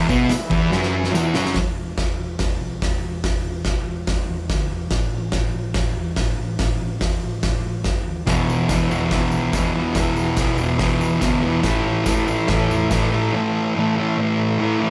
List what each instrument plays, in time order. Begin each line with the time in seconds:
Already playing: transistor combo organ G#4 B4 E5
0.08 picked electric bass B1, distorted electric guitar B2 B3, kick, tambourine
0.29 muted distorted electric guitar stroke, snare, open hi-hat, tambourine
0.50 picked electric bass E1, distorted electric guitar E2 E3, kick, tambourine
0.70 picked electric bass F#1, distorted electric guitar F#2 F#3, snare, tambourine
0.83 snare
0.92 transistor combo organ G#5
1.04 snare
1.13 picked electric bass E1, distorted electric guitar E2 E3, transistor combo organ F#5, snare, tambourine
1.34 picked electric bass F#1, distorted electric guitar F#2 F#3, transistor combo organ E5, snare, tambourine
1.45 snare
1.54 picked electric bass E1, kick, snare, open hi-hat
1.76 picked electric bass E1
1.98 picked electric bass E1, kick, snare, open hi-hat
2.19 picked electric bass E1
2.39 picked electric bass E1, kick, snare, open hi-hat
2.60 picked electric bass B1
2.82 picked electric bass E1, kick, snare, open hi-hat
3.02 picked electric bass E1
3.24 picked electric bass E1, kick, snare, open hi-hat
3.44 picked electric bass E1
3.65 picked electric bass B1, kick, snare, open hi-hat
3.87 picked electric bass E1
4.07 picked electric bass E1, kick, snare, open hi-hat
4.29 picked electric bass E2
4.50 picked electric bass D2, kick, snare, open hi-hat
4.72 picked electric bass E1
4.91 picked electric bass A1, kick, snare, open hi-hat
5.13 picked electric bass A1
5.32 picked electric bass A1, kick, snare, open hi-hat
5.55 picked electric bass A1
5.74 picked electric bass A1, kick, snare, open hi-hat
5.96 picked electric bass E2
6.16 picked electric bass A1, kick, snare, open hi-hat
6.39 picked electric bass A1
6.59 picked electric bass A1, kick, snare, open hi-hat
6.82 picked electric bass A1
7.01 picked electric bass E2, kick, snare, open hi-hat
7.24 picked electric bass A1
7.43 picked electric bass A1, kick, snare, open hi-hat
7.66 picked electric bass A2
7.84 picked electric bass F#1, kick, snare, open hi-hat
8.08 picked electric bass D#2
8.27 picked electric bass E1, distorted electric guitar E2 B2 E3, transistor combo organ G#4 B4 E5, kick, snare, open hi-hat, tambourine
8.50 picked electric bass E1, tambourine
8.68 picked electric bass E1, distorted electric guitar E2 B2 E3, kick, snare, open hi-hat, tambourine
8.90 picked electric bass E1, distorted electric guitar B2 E3, tambourine
9.10 picked electric bass E1, distorted electric guitar E2 B2, kick, snare, open hi-hat, tambourine
9.14 distorted electric guitar E3
9.31 picked electric bass B1, tambourine
9.53 picked electric bass E1, distorted electric guitar E2 B2 E3, kick, snare, open hi-hat, tambourine
9.74 picked electric bass E1, distorted electric guitar B2 E3
9.95 picked electric bass E1, distorted electric guitar E2 B2 E3, kick, snare, open hi-hat, tambourine
10.15 picked electric bass E1, tambourine
10.37 picked electric bass B1, distorted electric guitar E2 B2 E3, kick, snare, open hi-hat, tambourine
10.57 picked electric bass E1, distorted electric guitar E3, tambourine
10.62 distorted electric guitar B2
10.79 picked electric bass E1, distorted electric guitar E2 B2 E3, kick, snare, open hi-hat, tambourine
10.99 picked electric bass E2, tambourine
11.21 picked electric bass D2, distorted electric guitar E2 B2 E3, kick, snare, open hi-hat, tambourine
11.42 picked electric bass E1, distorted electric guitar E3
11.46 distorted electric guitar B2
11.63 picked electric bass A1, distorted electric guitar A2 E3 A3, transistor combo organ A4 C#5 E5, kick, snare, open hi-hat, tambourine
11.84 picked electric bass A1
12.05 picked electric bass A1, distorted electric guitar A2 E3 A3, kick, snare, open hi-hat, tambourine
12.27 picked electric bass A1, distorted electric guitar E3 A3, tambourine
12.48 picked electric bass A1, distorted electric guitar A2 E3 A3, kick, snare, open hi-hat, tambourine
12.70 picked electric bass E2, tambourine
12.90 picked electric bass A1, distorted electric guitar A2 E3 A3, kick, snare, open hi-hat, tambourine
13.12 picked electric bass A1, distorted electric guitar E3 A3
13.33 distorted electric guitar A2 E3
13.37 distorted electric guitar A3
13.76 distorted electric guitar A2 E3
13.80 distorted electric guitar A3
13.96 distorted electric guitar E3 A3
14.17 distorted electric guitar A2 E3
14.21 distorted electric guitar A3
14.59 distorted electric guitar A2 E3 A3
14.79 distorted electric guitar E3 A3